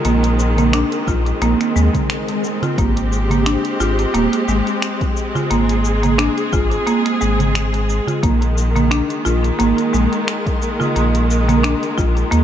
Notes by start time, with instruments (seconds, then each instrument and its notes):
Already playing: string section D#3 G#3
0.05 sub bass A#1, marimba A#3, string section C4, closed hi-hat, shaker
0.23 closed hi-hat, darbuka tek, shaker
0.39 shaker
0.58 marimba A#3, closed hi-hat, darbuka ka, darbuka dum, shaker
0.73 marimba D4, finger snap, closed hi-hat, shaker
0.92 closed hi-hat, darbuka ka, shaker
1.07 sub bass A#1, marimba F4, kick, shaker
1.26 closed hi-hat, darbuka ka, shaker
1.41 sub bass A#1, marimba A#3, closed hi-hat, swell, shaker
1.61 finger snap, closed hi-hat, shaker
1.76 sub bass D#2, marimba G#3, shaker
1.94 kick, closed hi-hat, darbuka dum, shaker
2.10 finger snap, closed hi-hat, shaker
2.28 closed hi-hat, darbuka ka, darbuka tek, shaker
2.44 darbuka tek, shaker
2.62 marimba F4, closed hi-hat, darbuka dum, shaker
2.78 sub bass G#1, string section G#3 G4, marimba A#3, kick, closed hi-hat, shaker
2.97 closed hi-hat, darbuka tek, shaker
3.12 shaker
3.30 marimba A#3, closed hi-hat, darbuka ka, darbuka dum, shaker
3.46 marimba D4, finger snap, closed hi-hat, shaker
3.64 closed hi-hat, darbuka ka, shaker
3.80 sub bass G#1, marimba F4, shaker
3.99 closed hi-hat, darbuka ka, shaker
4.14 sub bass D#1, marimba A#3, closed hi-hat, shaker
4.33 closed hi-hat, darbuka tek, shaker
4.48 sub bass G#1, marimba G#3, shaker
4.67 closed hi-hat, shaker
4.82 finger snap, closed hi-hat, shaker
5.01 kick, closed hi-hat, shaker
5.17 shaker
5.35 marimba F4, darbuka ka, darbuka dum, shaker
5.50 sub bass G#1, marimba A#3, string section G#4, closed hi-hat, shaker
5.69 closed hi-hat, shaker
5.85 shaker
6.03 marimba A#3, closed hi-hat, darbuka ka, darbuka dum, shaker
6.18 marimba D4, finger snap, closed hi-hat, shaker
6.38 closed hi-hat, shaker
6.53 sub bass G#1, marimba F4, kick, shaker
6.71 closed hi-hat, darbuka ka, shaker
6.87 marimba A#3, closed hi-hat, shaker
7.06 finger snap, closed hi-hat, shaker
7.21 sub bass G#1, marimba G#3, shaker
7.39 closed hi-hat, darbuka dum, shaker
7.55 finger snap, closed hi-hat, shaker
7.73 closed hi-hat, darbuka ka, shaker
7.89 darbuka tek, shaker
8.07 marimba F4, closed hi-hat, darbuka dum, shaker
8.23 sub bass A#1, string section D#3 G#3 A#3, marimba A#3, kick, closed hi-hat, shaker
8.41 closed hi-hat, darbuka tek, shaker
8.58 shaker
8.75 marimba A#3, closed hi-hat, darbuka ka, darbuka dum, shaker
8.91 marimba D4, finger snap, closed hi-hat, shaker
9.10 closed hi-hat, darbuka ka, shaker
9.25 sub bass A#1, marimba F4, shaker
9.44 closed hi-hat, darbuka ka, shaker
9.59 sub bass G#1, marimba A#3, closed hi-hat, shaker
9.78 closed hi-hat, darbuka tek, shaker
9.93 sub bass A#1, marimba G#3, shaker
10.13 closed hi-hat, shaker
10.28 finger snap, closed hi-hat, shaker
10.47 kick, closed hi-hat, shaker
10.62 shaker
10.79 marimba F4, darbuka ka, darbuka dum, shaker
10.96 sub bass A#1, marimba A#3, closed hi-hat, shaker
11.15 closed hi-hat, shaker
11.31 shaker
11.48 marimba A#3, closed hi-hat, darbuka ka, darbuka dum, shaker
11.63 marimba D4, finger snap, closed hi-hat, shaker
11.83 closed hi-hat, shaker
11.98 sub bass A#1, marimba F4, kick, shaker
12.17 closed hi-hat, darbuka ka, shaker
12.31 sub bass D#2, marimba A#3, closed hi-hat, shaker